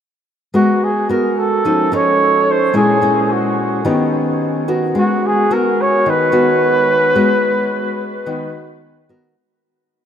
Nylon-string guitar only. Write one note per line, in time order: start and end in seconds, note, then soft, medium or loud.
0.54 1.61 G#3 medium
0.54 0.89 B3 medium
0.54 0.90 F#4 soft
0.54 0.90 A#4 medium
1.09 1.62 B3 soft
1.09 1.62 F#4 soft
1.09 1.63 A#4 medium
1.65 2.72 F3 medium
1.65 1.88 C#4 medium
1.65 1.88 D#4 medium
1.65 1.88 A4 medium
1.92 2.70 C#4 medium
1.92 2.71 D#4 medium
1.92 2.71 A4 medium
2.73 3.82 A#2 medium
2.73 2.97 G#3 soft
2.73 2.97 C#4 medium
2.73 2.98 E4 medium
3.02 3.80 G#3 soft
3.02 3.81 C#4 medium
3.02 3.81 E4 medium
3.85 4.93 D#3 medium
3.85 4.63 B3 soft
3.85 4.63 C#4 medium
3.85 4.64 G4 medium
4.68 5.46 B3 medium
4.68 5.46 F#4 medium
4.68 5.47 A#4 medium
4.95 6.03 G#3 medium
5.51 6.06 B3 medium
5.51 6.06 F#4 medium
5.51 6.06 A#4 medium
6.06 7.14 D#3 medium
6.32 7.11 B3 medium
6.32 7.11 F#4 medium
7.15 8.24 G#3 medium
7.15 7.90 B3 medium
7.15 7.90 F#4 soft
8.26 9.34 D#3 medium
8.26 8.81 B3 medium
8.26 8.82 F#4 soft
9.09 9.35 B3 medium
9.09 9.35 F#4 medium
9.09 9.35 A#4 medium